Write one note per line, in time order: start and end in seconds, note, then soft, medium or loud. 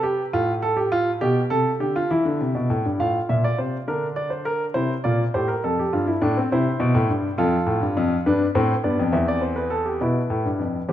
0.00 0.30 C3 medium
0.00 0.21 G4 medium
0.33 1.18 A2 medium
0.33 0.51 F4 medium
0.62 0.76 A4 medium
0.77 0.91 G4 medium
0.92 1.10 F4 loud
1.21 1.40 B2 medium
1.21 1.39 G4 medium
1.50 1.69 C3 medium
1.50 1.69 A4 medium
1.80 1.98 D3 medium
1.80 1.94 G4 medium
1.96 2.09 F4 medium
2.11 2.24 E3 medium
2.11 2.96 E4 medium
2.25 2.39 D3 medium
2.41 2.54 C3 medium
2.55 2.68 B2 medium
2.70 2.83 A2 medium
2.85 2.98 G2 medium
3.00 3.18 A2 medium
3.00 3.85 F4 medium
3.00 3.17 F5 medium
3.29 3.47 A#2 medium
3.29 3.43 E5 medium
3.44 3.58 D5 medium
3.58 3.76 C3 medium
3.58 3.76 C5 medium
3.88 4.73 D3 medium
3.88 4.73 D4 medium
3.88 4.06 A#4 medium
4.16 4.30 D5 medium
4.30 4.45 C5 medium
4.45 4.64 A#4 medium
4.74 4.93 C3 medium
4.74 4.93 E4 medium
4.74 4.93 C5 medium
5.04 5.23 A#2 medium
5.04 5.23 F4 medium
5.04 5.22 D5 medium
5.34 5.52 A2 medium
5.34 5.52 G4 medium
5.34 5.48 C5 medium
5.48 5.62 A#4 medium
5.64 5.82 F2 medium
5.64 6.48 A4 medium
5.79 5.93 G4 medium
5.93 6.11 G2 medium
5.93 6.07 F4 medium
6.07 6.21 E4 medium
6.21 6.40 A2 medium
6.21 6.35 D4 medium
6.38 6.51 C4 medium
6.52 6.70 C3 medium
6.52 7.36 E4 medium
6.52 7.36 C5 medium
6.80 6.94 B2 medium
6.95 7.09 A2 medium
7.09 7.27 G2 medium
7.38 7.56 F2 medium
7.38 8.23 F4 medium
7.38 8.23 A4 medium
7.67 7.81 A2 medium
7.81 7.96 G2 medium
7.97 8.15 F2 loud
8.26 8.44 G2 medium
8.26 8.45 D4 medium
8.26 8.44 B4 medium
8.55 8.73 A2 loud
8.55 8.73 C4 medium
8.55 8.73 C5 medium
8.84 8.98 G2 medium
8.84 9.02 B3 medium
8.84 9.02 D5 medium
8.99 9.13 F2 medium
9.12 9.99 E2 medium
9.12 9.99 C4 medium
9.12 9.27 E5 medium
9.28 9.42 D5 medium
9.42 9.56 C5 medium
9.56 9.71 B4 medium
9.70 9.85 A4 medium
9.86 10.01 G4 medium
10.01 10.20 B2 medium
10.01 10.88 E4 medium
10.01 10.88 B4 medium
10.30 10.45 A2 medium
10.45 10.60 G2 medium
10.59 10.78 F2 medium
10.89 10.93 E2 medium
10.89 10.93 G4 medium
10.89 10.93 C5 medium